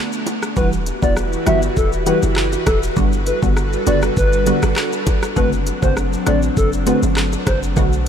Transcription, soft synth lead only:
0, 0, Header, 1, 2, 480
1, 0, Start_track
1, 0, Key_signature, 1, "minor"
1, 0, Tempo, 600000
1, 454, Time_signature, 4, 2, 24, 8
1, 6466, End_track
2, 0, Start_track
2, 0, Title_t, "Soft synth lead"
2, 0, Program_c, 0, 80
2, 453, Note_on_c, 0, 71, 105
2, 560, Note_off_c, 0, 71, 0
2, 821, Note_on_c, 0, 74, 85
2, 916, Note_off_c, 0, 74, 0
2, 1174, Note_on_c, 0, 76, 73
2, 1280, Note_off_c, 0, 76, 0
2, 1415, Note_on_c, 0, 69, 87
2, 1521, Note_off_c, 0, 69, 0
2, 1655, Note_on_c, 0, 71, 87
2, 1761, Note_off_c, 0, 71, 0
2, 2134, Note_on_c, 0, 69, 83
2, 2240, Note_off_c, 0, 69, 0
2, 2614, Note_on_c, 0, 71, 86
2, 2720, Note_off_c, 0, 71, 0
2, 3095, Note_on_c, 0, 74, 80
2, 3201, Note_off_c, 0, 74, 0
2, 3337, Note_on_c, 0, 71, 112
2, 3681, Note_off_c, 0, 71, 0
2, 4295, Note_on_c, 0, 71, 106
2, 4401, Note_off_c, 0, 71, 0
2, 4663, Note_on_c, 0, 72, 83
2, 4756, Note_off_c, 0, 72, 0
2, 5016, Note_on_c, 0, 74, 75
2, 5121, Note_off_c, 0, 74, 0
2, 5257, Note_on_c, 0, 69, 84
2, 5362, Note_off_c, 0, 69, 0
2, 5498, Note_on_c, 0, 71, 83
2, 5603, Note_off_c, 0, 71, 0
2, 5976, Note_on_c, 0, 72, 84
2, 6081, Note_off_c, 0, 72, 0
2, 6466, End_track
0, 0, End_of_file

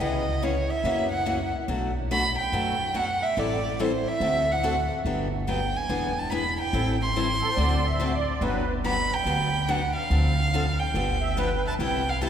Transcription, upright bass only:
0, 0, Header, 1, 2, 480
1, 0, Start_track
1, 0, Key_signature, 1, "major"
1, 0, Tempo, 421053
1, 5, Time_signature, 4, 2, 24, 8
1, 14016, End_track
2, 0, Start_track
2, 0, Title_t, "Upright bass"
2, 0, Program_c, 0, 32
2, 0, Note_on_c, 0, 37, 76
2, 767, Note_off_c, 0, 37, 0
2, 953, Note_on_c, 0, 42, 79
2, 1724, Note_off_c, 0, 42, 0
2, 1916, Note_on_c, 0, 35, 84
2, 2685, Note_off_c, 0, 35, 0
2, 2875, Note_on_c, 0, 42, 73
2, 3644, Note_off_c, 0, 42, 0
2, 3843, Note_on_c, 0, 33, 83
2, 4609, Note_off_c, 0, 33, 0
2, 4791, Note_on_c, 0, 38, 78
2, 5561, Note_off_c, 0, 38, 0
2, 5752, Note_on_c, 0, 31, 78
2, 6522, Note_off_c, 0, 31, 0
2, 6720, Note_on_c, 0, 28, 74
2, 7486, Note_off_c, 0, 28, 0
2, 7673, Note_on_c, 0, 33, 81
2, 8443, Note_off_c, 0, 33, 0
2, 8630, Note_on_c, 0, 38, 74
2, 9401, Note_off_c, 0, 38, 0
2, 9587, Note_on_c, 0, 31, 85
2, 10360, Note_off_c, 0, 31, 0
2, 10547, Note_on_c, 0, 38, 75
2, 11321, Note_off_c, 0, 38, 0
2, 11517, Note_on_c, 0, 38, 79
2, 12287, Note_off_c, 0, 38, 0
2, 12475, Note_on_c, 0, 31, 84
2, 13248, Note_off_c, 0, 31, 0
2, 13440, Note_on_c, 0, 36, 86
2, 14016, Note_off_c, 0, 36, 0
2, 14016, End_track
0, 0, End_of_file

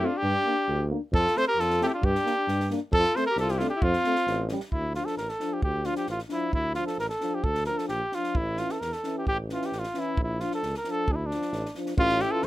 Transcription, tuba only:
0, 0, Header, 1, 2, 480
1, 0, Start_track
1, 0, Key_signature, -1, "major"
1, 0, Tempo, 449775
1, 233, Time_signature, 2, 2, 24, 8
1, 5032, Key_signature, -1, "minor"
1, 5033, Tempo, 453858
1, 13232, End_track
2, 0, Start_track
2, 0, Title_t, "Tuba"
2, 0, Program_c, 0, 58
2, 244, Note_on_c, 0, 43, 102
2, 373, Note_off_c, 0, 43, 0
2, 726, Note_on_c, 0, 38, 94
2, 986, Note_off_c, 0, 38, 0
2, 1200, Note_on_c, 0, 41, 102
2, 1329, Note_off_c, 0, 41, 0
2, 1673, Note_on_c, 0, 41, 81
2, 1936, Note_off_c, 0, 41, 0
2, 2164, Note_on_c, 0, 43, 112
2, 2292, Note_off_c, 0, 43, 0
2, 2643, Note_on_c, 0, 43, 87
2, 2903, Note_off_c, 0, 43, 0
2, 3112, Note_on_c, 0, 41, 100
2, 3243, Note_off_c, 0, 41, 0
2, 3588, Note_on_c, 0, 36, 97
2, 3852, Note_off_c, 0, 36, 0
2, 4085, Note_on_c, 0, 41, 103
2, 4213, Note_off_c, 0, 41, 0
2, 4554, Note_on_c, 0, 33, 91
2, 4818, Note_off_c, 0, 33, 0
2, 5051, Note_on_c, 0, 38, 70
2, 5309, Note_off_c, 0, 38, 0
2, 5517, Note_on_c, 0, 33, 60
2, 5647, Note_off_c, 0, 33, 0
2, 5992, Note_on_c, 0, 38, 77
2, 6256, Note_off_c, 0, 38, 0
2, 6470, Note_on_c, 0, 33, 64
2, 6602, Note_off_c, 0, 33, 0
2, 6944, Note_on_c, 0, 38, 68
2, 7210, Note_off_c, 0, 38, 0
2, 7428, Note_on_c, 0, 33, 57
2, 7561, Note_off_c, 0, 33, 0
2, 7906, Note_on_c, 0, 38, 75
2, 8172, Note_off_c, 0, 38, 0
2, 8395, Note_on_c, 0, 34, 70
2, 8527, Note_off_c, 0, 34, 0
2, 8883, Note_on_c, 0, 33, 79
2, 9145, Note_off_c, 0, 33, 0
2, 9361, Note_on_c, 0, 40, 66
2, 9492, Note_off_c, 0, 40, 0
2, 9848, Note_on_c, 0, 33, 69
2, 10109, Note_off_c, 0, 33, 0
2, 10330, Note_on_c, 0, 33, 69
2, 10458, Note_off_c, 0, 33, 0
2, 10805, Note_on_c, 0, 34, 77
2, 11066, Note_off_c, 0, 34, 0
2, 11289, Note_on_c, 0, 37, 78
2, 11417, Note_off_c, 0, 37, 0
2, 11751, Note_on_c, 0, 38, 72
2, 12016, Note_off_c, 0, 38, 0
2, 12227, Note_on_c, 0, 33, 79
2, 12361, Note_off_c, 0, 33, 0
2, 12708, Note_on_c, 0, 33, 105
2, 12972, Note_off_c, 0, 33, 0
2, 13192, Note_on_c, 0, 40, 93
2, 13232, Note_off_c, 0, 40, 0
2, 13232, End_track
0, 0, End_of_file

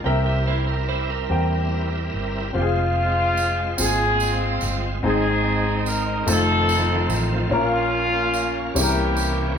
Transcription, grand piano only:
0, 0, Header, 1, 2, 480
1, 0, Start_track
1, 0, Key_signature, -4, "minor"
1, 0, Tempo, 827586
1, 29, Time_signature, 6, 3, 24, 8
1, 5557, End_track
2, 0, Start_track
2, 0, Title_t, "Grand piano"
2, 0, Program_c, 0, 0
2, 0, Control_c, 0, 64, 127
2, 23, Note_on_c, 0, 60, 79
2, 30, Note_on_c, 0, 48, 61
2, 30, Note_on_c, 0, 67, 69
2, 31, Note_on_c, 0, 70, 77
2, 36, Control_c, 0, 64, 0
2, 39, Note_on_c, 0, 76, 86
2, 122, Control_c, 0, 64, 127
2, 641, Note_off_c, 0, 60, 0
2, 645, Note_off_c, 0, 67, 0
2, 645, Note_off_c, 0, 70, 0
2, 649, Note_off_c, 0, 76, 0
2, 731, Note_off_c, 0, 48, 0
2, 751, Note_on_c, 0, 60, 69
2, 753, Note_on_c, 0, 67, 58
2, 759, Note_on_c, 0, 70, 57
2, 763, Note_on_c, 0, 79, 76
2, 1366, Note_off_c, 0, 60, 0
2, 1367, Note_off_c, 0, 67, 0
2, 1370, Note_off_c, 0, 70, 0
2, 1372, Note_off_c, 0, 79, 0
2, 1469, Note_on_c, 0, 60, 73
2, 1477, Note_on_c, 0, 65, 76
2, 1481, Note_on_c, 0, 67, 68
2, 1484, Control_c, 0, 64, 0
2, 1516, Note_off_c, 0, 67, 0
2, 1520, Note_on_c, 0, 68, 92
2, 1581, Control_c, 0, 64, 127
2, 2085, Note_off_c, 0, 60, 0
2, 2089, Note_off_c, 0, 65, 0
2, 2111, Note_off_c, 0, 68, 0
2, 2189, Note_on_c, 0, 60, 69
2, 2197, Note_on_c, 0, 65, 65
2, 2202, Note_on_c, 0, 68, 74
2, 2805, Note_off_c, 0, 60, 0
2, 2809, Note_off_c, 0, 65, 0
2, 2812, Note_off_c, 0, 68, 0
2, 2917, Note_on_c, 0, 60, 88
2, 2923, Note_on_c, 0, 63, 76
2, 2924, Note_on_c, 0, 44, 60
2, 2925, Control_c, 0, 64, 0
2, 2930, Note_on_c, 0, 68, 84
2, 3013, Control_c, 0, 64, 127
2, 3528, Note_off_c, 0, 60, 0
2, 3531, Note_off_c, 0, 63, 0
2, 3535, Note_off_c, 0, 68, 0
2, 3617, Note_off_c, 0, 44, 0
2, 3632, Note_on_c, 0, 57, 72
2, 3635, Note_on_c, 0, 60, 67
2, 3637, Note_on_c, 0, 63, 64
2, 3642, Note_on_c, 0, 65, 67
2, 3644, Note_on_c, 0, 72, 78
2, 3645, Control_c, 0, 64, 0
2, 3754, Control_c, 0, 64, 127
2, 4245, Note_off_c, 0, 57, 0
2, 4246, Note_off_c, 0, 60, 0
2, 4247, Note_off_c, 0, 63, 0
2, 4250, Note_off_c, 0, 65, 0
2, 4251, Note_off_c, 0, 72, 0
2, 4356, Note_on_c, 0, 61, 80
2, 4362, Note_on_c, 0, 46, 68
2, 4363, Note_on_c, 0, 65, 70
2, 4364, Control_c, 0, 64, 0
2, 4370, Note_on_c, 0, 70, 93
2, 4481, Control_c, 0, 64, 127
2, 4965, Note_off_c, 0, 61, 0
2, 4969, Note_off_c, 0, 65, 0
2, 4972, Note_off_c, 0, 70, 0
2, 5053, Note_off_c, 0, 46, 0
2, 5072, Note_on_c, 0, 55, 72
2, 5075, Note_on_c, 0, 60, 69
2, 5079, Note_on_c, 0, 48, 67
2, 5079, Note_on_c, 0, 61, 73
2, 5080, Control_c, 0, 64, 0
2, 5083, Note_on_c, 0, 64, 64
2, 5085, Note_on_c, 0, 68, 60
2, 5117, Note_off_c, 0, 68, 0
2, 5122, Note_on_c, 0, 70, 81
2, 5179, Control_c, 0, 64, 127
2, 5557, Note_off_c, 0, 48, 0
2, 5557, Note_off_c, 0, 55, 0
2, 5557, Note_off_c, 0, 60, 0
2, 5557, Note_off_c, 0, 61, 0
2, 5557, Note_off_c, 0, 64, 0
2, 5557, Note_off_c, 0, 70, 0
2, 5557, End_track
0, 0, End_of_file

